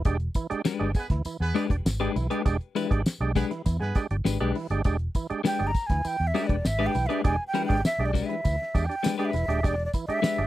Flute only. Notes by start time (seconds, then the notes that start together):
5.46 G5
5.67 A#5
5.86 G#5
6.07 G5
6.27 E5
6.47 D5
6.66 E5
6.86 G5
7.06 E5
7.25 G#5
7.47 G5
7.65 G5
7.85 E5
8.06 D5
8.26 E5
8.85 G5
9.18 G5
9.25 E5
9.66 D5
9.85 D5
10.07 E5